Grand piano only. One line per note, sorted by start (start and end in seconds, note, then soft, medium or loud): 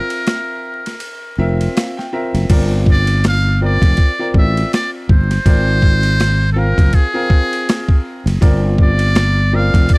0.00 0.79 C4 medium
0.00 0.79 F4 medium
0.00 0.83 A#4 medium
0.00 0.80 E5 medium
1.38 2.02 C4 medium
1.38 2.02 F4 medium
1.38 2.03 A#4 medium
1.38 2.03 E5 medium
1.76 1.96 F5 medium
1.97 2.12 G5 medium
2.13 2.45 C4 medium
2.13 2.45 F4 medium
2.13 2.45 A#4 medium
2.13 2.45 E5 medium
2.13 2.47 A#5 medium
2.50 3.45 C4 medium
2.50 3.46 F4 medium
2.50 3.46 A#4 medium
2.50 3.46 D5 medium
3.61 4.09 C4 medium
3.61 4.09 F4 medium
3.61 4.09 A#4 medium
3.61 4.09 D5 medium
4.19 5.27 C4 medium
4.19 5.28 F4 medium
4.19 5.28 A#4 medium
4.19 5.28 D5 medium
5.45 6.41 C4 medium
5.45 6.42 F4 medium
5.45 6.42 A#4 medium
5.45 6.42 D5 medium
6.55 7.04 C4 medium
6.55 7.04 F4 medium
6.55 7.05 A#4 medium
6.55 7.05 F5 medium
7.14 8.23 C4 medium
7.14 8.23 F4 medium
7.14 8.23 A#4 medium
7.14 8.23 F5 medium
8.41 9.37 C4 medium
8.41 9.37 F4 medium
8.41 9.38 A#4 medium
8.41 9.38 D5 medium
9.53 9.98 C4 medium
9.53 9.98 F4 medium
9.53 9.98 A#4 medium
9.53 9.98 D5 medium